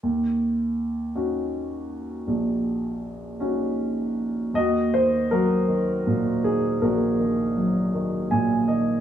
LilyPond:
<<
  \new Staff \with { instrumentName = "Grand piano" } { \time 6/8 \key ees \minor \tempo 4. = 53 << { r2. | r2. | ees''8 c''8 bes'4. aes'8 | bes'4 r4 aes''8 ees''8 | } \\ { r2. | r2. | ges'4 ges'4. r8 | ges'4. r4. | } >> }
  \new Staff \with { instrumentName = "Grand piano" } { \clef bass \time 6/8 \key ees \minor ees,4. <des' ees' ges'>4. | bes,,4. <des' ees' ges'>4. | ees,8 ees8 ges8 ees8 bes,8 ees8 | bes,,8 ees8 ges8 ees8 bes,8 ees8 | }
>>